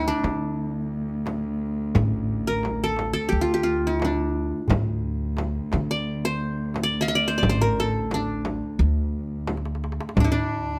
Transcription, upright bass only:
Already playing: D2
0.24 D3
1.95 A1
3.32 D2
4.70 D2
5.73 D3
7.43 A1
8.79 D2
10.17 D2

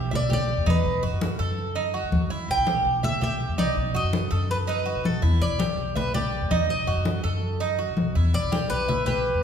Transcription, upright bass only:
Already playing: B1
0.57 E2
0.66 E2
0.85 B1
1.03 F#2
1.13 F#2
1.39 F#2
2.03 B1
2.12 D#2
2.30 E2
2.48 B1
2.57 B1
2.85 B1
3.49 E2
3.58 C2
3.77 B1
3.95 F#2
4.04 F#2
4.32 F#2
4.95 B1
5.04 B1
5.22 E2
5.41 B1
5.49 B1
5.77 B1
6.41 E2
6.51 E2
6.69 B1
6.88 F#2
6.97 F#2
7.24 F#2
7.89 B1
7.97 B1
8.15 E2
8.34 B1
8.43 B1
8.71 B1
9.34 E2

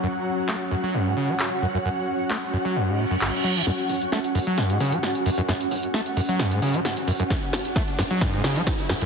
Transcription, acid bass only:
0.03 F#2
0.49 A3
0.71 F#2
0.83 F#3
0.94 F#2
1.06 G#2
1.17 C#3
1.29 F#3
1.62 F#2
1.74 F#2
1.85 F#2
2.30 A3
2.53 F#2
2.65 F#3
2.76 F#2
2.88 G#2
2.99 A2
3.11 F#2
3.21 F#1
3.44 F#3
3.56 E3
3.67 F#2
4.12 A3
4.35 F#2
4.47 F#3
4.58 F#2
4.70 G#2
4.80 C#3
4.92 F#3
5.26 F#2
5.38 F#2
5.48 F#2
5.94 A3
6.17 F#2
6.29 F#3
6.39 F#2
6.51 G#2
6.62 C#3
6.74 F#3
7.08 F#2
7.20 F#2
7.30 F#2
7.76 A3
7.98 F#2
8.11 F#3
8.21 F#2
8.33 G#2
8.44 C#3
8.56 F#3
8.90 F#2
9.01 F#2

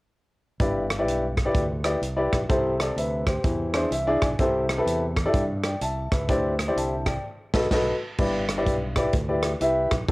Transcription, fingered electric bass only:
0.60 G1
1.07 B1
1.54 D2
2.02 C2
2.33 B1
2.49 C2
2.96 D2
3.44 E2
3.91 C2
4.22 B1
4.39 C2
4.86 E2
5.34 G2
5.81 C2
6.12 C#2
6.29 D2
6.76 C2
7.54 B1
7.71 B1
8.19 G1
8.67 B1
9.13 D2
9.61 C2
9.92 B1
10.08 C2

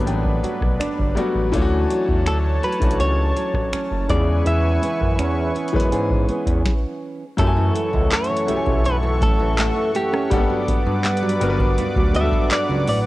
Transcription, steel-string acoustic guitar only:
Already playing: G2 F#3 B3
0.06 D4
0.43 F#3
0.80 D4
1.17 F#3
1.90 F#3
2.27 A3
2.63 F#3
3.00 C#4
3.36 F#3
3.73 C#4
4.09 E3
4.46 E3
4.82 B3
5.19 C#4
5.55 B3
5.92 G#4
6.29 B3
7.38 F#2
7.57 E3
7.75 A3
7.93 E3
8.11 A3
8.30 E3
8.48 A3
8.66 C#4
8.84 F#2
9.03 E3
9.21 A3
9.39 E3
9.58 A3
9.76 E3
9.94 A3
10.13 C#4
10.31 G2
10.50 F#3
10.68 B3
10.86 F#3
11.04 B3
11.23 F#3
11.41 B3
11.60 D4
11.78 G2
11.96 F#3
12.15 B3
12.33 F#3
12.51 B3
12.70 F#3
12.88 B3

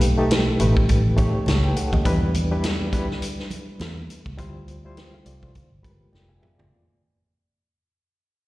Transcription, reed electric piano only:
Already playing: A3 D#4 G4 B4
0.17 A3 D#4 G4 A4
0.60 A3 C#4 G4 B4
0.67 D#4
1.17 A3 D#4 G4 C#5
1.47 C#5 A5
1.64 B4 G5
1.76 A4 F#5
1.93 G4 D#5
2.05 G3 D4 E4 B4
2.51 G3 D4 E4 B4
2.93 G3 D4 E4 B4
4.38 G3 E4 F4 C5
4.85 G3 E4 F4 C5
4.97 G5
5.14 A4 F5
5.26 F4 D5
5.42 E4 C5
5.83 G#3 F4 G4 A#4 B5
5.90 B4
6.13 F4 D5 G5
6.29 G#4 F5 G#5
6.42 G#4 E5
6.58 F4 D5

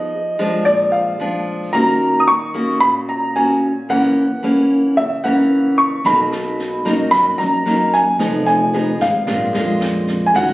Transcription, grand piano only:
Already playing: D#5
0.65 D5
0.92 F5
1.73 A#5
2.20 D#6
2.28 C#6
2.80 B5
3.09 A#5
3.36 G#5
3.90 F#5
4.97 E5
5.24 F#5
5.78 C#6
6.06 B5
7.11 B5
7.38 A#5
7.94 G#5
8.46 G#5
9.02 F5
10.26 G#5
10.36 F#5

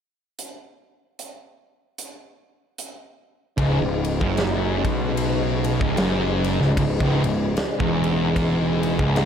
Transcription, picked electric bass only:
3.58 C#1
3.82 C#1
4.21 F#1
4.85 B1
5.81 C#1
5.97 F#1
6.61 C#1
6.77 C#1
7.01 C#1
7.24 C#1
7.80 E1
8.99 C#1

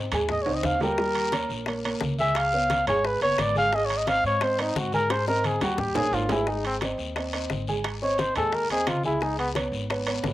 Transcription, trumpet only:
0.32 D#5
0.42 C#5
0.55 D#5
0.66 F5
0.83 A#4
2.20 E5
2.37 F5
2.87 C#5
3.06 B4
3.22 C#5
3.41 D5
3.58 F5
3.75 D#5
3.86 C#5
3.97 D#5
4.08 F5
4.27 C#5
4.43 C5
4.61 D#4
4.78 F#4
4.94 A#4
5.12 C5
5.28 A#4
5.47 G#4
5.63 F#4
5.80 G4
5.96 G#4
6.14 F4
6.32 E4
6.49 D#4
6.67 C4
8.03 C#5
8.20 C5
8.37 A4
8.55 A#4
8.71 G#4
8.88 F4
9.06 E4
9.23 D#4
9.39 B3

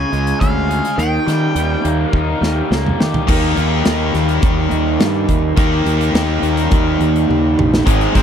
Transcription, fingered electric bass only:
0.13 C#2
0.41 D2
0.98 D#2
1.27 D#3
1.55 D#2
1.85 D#2
2.13 D#2
2.41 D#2
2.71 C#2
3.01 D#3
3.29 D#2
3.58 D#2
3.86 D#2
4.14 D#2
4.43 D#2
4.72 D#2
5.00 G2
5.29 D#2
5.57 D#2
5.86 D#2
6.14 D#2
6.42 D#2
6.72 D#2
7.01 D#2
7.29 D#2
7.59 A#1
7.87 G#1
8.15 G#1

